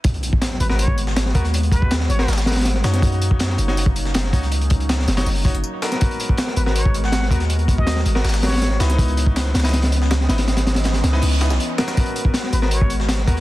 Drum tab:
HH |x-x-x---x---x---x---x---x---x-x-|x-x-x---x---x---o---xxxxx---x-x-|x-x-x---x---x---x---x---x---x-x-|x-x-x-x-x---x-x-o---x-x-----x-x-|
TB |x---x---x---x---x---x---x---x---|x---x---x---x---xxx-x---x---x---|x---x---x---x---x---x---x---x---|x---x---x---x---x---x---x---x---|
SD |--------o-o---o-------o-o-o---o-|--------o-o---o-ooo-ooooo-o-o-o-|--------o-o---o-------o-o-o---o-|--------o-o-o-o-------------o-o-|
BD |o-----o-----------o---------o---|----o-o-------------------------|o-----o-----------o---------o---|----o---------------o-----------|

HH |x-x-x---x---x---x---x---x---x-x-|x-x-x---x---x---o---xxxxx---x-x-|x-x-x---x---x-x-x-x-x---x---x-x-|x-x-x-x-x-x-x---o---x---x---x---|
TB |x---x---x---x---x---x---x---x---|x---x---x---x---xxx-x---x---x---|x---x---x---xxxxx---x---x---x---|x-x---x-x---x---x---x-x-----x-x-|
SD |--------o-o---o-------o-o-o---o-|--------o-o---o-ooo-ooooo-o-o-o-|--------o-o-ooooo-o---o-o-o-o-o-|o-o-o-o-o-o-o-o-----o-o-----o-o-|
BD |o-----o-----------o---------o---|----o-o-------------------------|o-----o-------------------------|--------------------------------|

HH |x-x-x---x---x---x---x---x---x-x-|
TB |x---x---x---x---x---x---x---x---|
SD |--------o-o---o-------o-o-o---o-|
BD |o-----o-----------o---------o---|